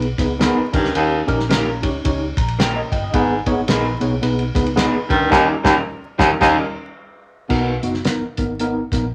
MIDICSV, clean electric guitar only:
0, 0, Header, 1, 2, 480
1, 0, Start_track
1, 0, Tempo, 545951
1, 838, Time_signature, 4, 2, 24, 8
1, 8041, End_track
2, 0, Start_track
2, 0, Title_t, "Clean electric guitar"
2, 0, Program_c, 0, 27
2, 355, Note_on_c, 0, 59, 98
2, 361, Note_on_c, 0, 63, 90
2, 367, Note_on_c, 0, 68, 88
2, 371, Note_on_c, 0, 71, 101
2, 509, Note_off_c, 0, 59, 0
2, 512, Note_off_c, 0, 63, 0
2, 515, Note_off_c, 0, 68, 0
2, 517, Note_off_c, 0, 71, 0
2, 1313, Note_on_c, 0, 58, 93
2, 1319, Note_on_c, 0, 61, 77
2, 1323, Note_on_c, 0, 67, 88
2, 1328, Note_on_c, 0, 70, 95
2, 1468, Note_off_c, 0, 58, 0
2, 1472, Note_off_c, 0, 61, 0
2, 1474, Note_off_c, 0, 67, 0
2, 1476, Note_off_c, 0, 70, 0
2, 2274, Note_on_c, 0, 58, 84
2, 2280, Note_on_c, 0, 61, 97
2, 2285, Note_on_c, 0, 67, 100
2, 2292, Note_on_c, 0, 70, 99
2, 2429, Note_off_c, 0, 58, 0
2, 2432, Note_off_c, 0, 61, 0
2, 2435, Note_off_c, 0, 67, 0
2, 2438, Note_off_c, 0, 70, 0
2, 3236, Note_on_c, 0, 59, 81
2, 3242, Note_on_c, 0, 63, 91
2, 3247, Note_on_c, 0, 68, 89
2, 3251, Note_on_c, 0, 71, 86
2, 3389, Note_off_c, 0, 59, 0
2, 3392, Note_off_c, 0, 63, 0
2, 3395, Note_off_c, 0, 68, 0
2, 3397, Note_off_c, 0, 71, 0
2, 4187, Note_on_c, 0, 59, 83
2, 4194, Note_on_c, 0, 63, 92
2, 4200, Note_on_c, 0, 68, 102
2, 4205, Note_on_c, 0, 71, 105
2, 4345, Note_off_c, 0, 59, 0
2, 4348, Note_off_c, 0, 63, 0
2, 4351, Note_off_c, 0, 68, 0
2, 4354, Note_off_c, 0, 71, 0
2, 4666, Note_on_c, 0, 55, 98
2, 4673, Note_on_c, 0, 61, 104
2, 4678, Note_on_c, 0, 63, 102
2, 4683, Note_on_c, 0, 70, 106
2, 4867, Note_off_c, 0, 55, 0
2, 4871, Note_off_c, 0, 61, 0
2, 4874, Note_off_c, 0, 63, 0
2, 4877, Note_off_c, 0, 70, 0
2, 4956, Note_on_c, 0, 55, 106
2, 4965, Note_on_c, 0, 61, 105
2, 4970, Note_on_c, 0, 63, 101
2, 4975, Note_on_c, 0, 70, 96
2, 5090, Note_off_c, 0, 55, 0
2, 5094, Note_off_c, 0, 61, 0
2, 5097, Note_off_c, 0, 63, 0
2, 5100, Note_off_c, 0, 70, 0
2, 5437, Note_on_c, 0, 55, 93
2, 5443, Note_on_c, 0, 61, 99
2, 5450, Note_on_c, 0, 63, 97
2, 5454, Note_on_c, 0, 70, 94
2, 5570, Note_off_c, 0, 55, 0
2, 5573, Note_off_c, 0, 61, 0
2, 5577, Note_off_c, 0, 63, 0
2, 5579, Note_off_c, 0, 70, 0
2, 5629, Note_on_c, 0, 55, 104
2, 5635, Note_on_c, 0, 61, 106
2, 5639, Note_on_c, 0, 63, 106
2, 5645, Note_on_c, 0, 70, 104
2, 5828, Note_off_c, 0, 55, 0
2, 5832, Note_off_c, 0, 61, 0
2, 5834, Note_off_c, 0, 63, 0
2, 5838, Note_off_c, 0, 70, 0
2, 8041, End_track
0, 0, End_of_file